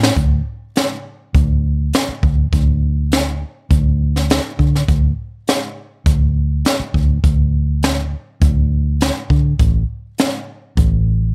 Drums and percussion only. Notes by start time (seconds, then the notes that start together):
0.03 snare
0.16 kick, closed hi-hat
0.76 snare, closed hi-hat
1.35 kick, closed hi-hat
1.93 snare, closed hi-hat
2.23 kick
2.53 kick, closed hi-hat
3.12 snare, closed hi-hat
3.71 kick, closed hi-hat
4.16 snare
4.30 snare, closed hi-hat
4.59 kick
4.75 snare
4.88 kick, closed hi-hat
5.47 snare, closed hi-hat
6.06 kick, closed hi-hat
6.65 snare, closed hi-hat
6.94 kick
7.24 kick, closed hi-hat
7.83 snare, closed hi-hat
8.41 kick, closed hi-hat
9.01 snare, closed hi-hat
9.30 kick
9.59 kick, closed hi-hat
10.18 snare, closed hi-hat
10.77 kick, closed hi-hat